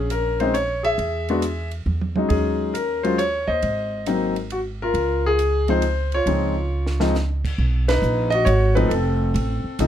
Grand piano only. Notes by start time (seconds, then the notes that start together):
Already playing: C#4
0.11 A#4
0.40 G#3 C4 C#4 D#4 C5
0.54 C#5
0.83 G#4 E5
1.30 G#3 B3 D4 F#4
2.17 F#3 G#3 C#4 D#4
2.29 C#4 G#4
2.74 A#4
3.03 F#3 G#3 C#4 F4 C5
3.18 C#5
3.48 C5 D#5
4.07 F#3 A#3 C4 D#4
4.52 F#4
4.82 F4 A#4
5.26 G#4
5.69 F3 G#3 C4 D#4 C5
6.14 F4 C#5
6.27 F3 G#3 C4 D#4
7.00 F3 G#3 C4 D#4
7.88 D#4 B4
8.30 F#4 D#5
8.45 F#4 C#5
8.75 F3 A3 C4 D#4 B4
8.89 A4
8.93 C4
9.80 F3 A3 C4 D#4